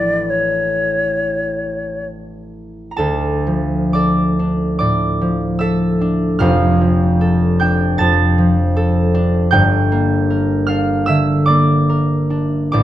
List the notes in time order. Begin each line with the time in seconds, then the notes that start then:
Already playing: A1 E3 E4 A4 D5
0.30 C#5
2.91 A#5
2.97 D2 A4 A5
3.47 F3
3.93 A4 D5 D6
4.39 D4
4.79 A2 D5 D6
5.21 F3
5.59 A4 E5 E6
6.01 D4
6.39 F1 F2 F5 F6
6.81 F3
7.21 A4
7.60 D4 G5 G6
7.98 F2 A5 A6
8.38 F3
8.77 A4
9.15 D4
9.51 G1 G2 G5 G6
9.92 A#3
10.30 A#4
10.67 D4 F5 F6
11.06 D3 E5 E6
11.46 A#3 D5 D6
11.89 A#4
12.30 D4
12.72 A1 A2 D5 D6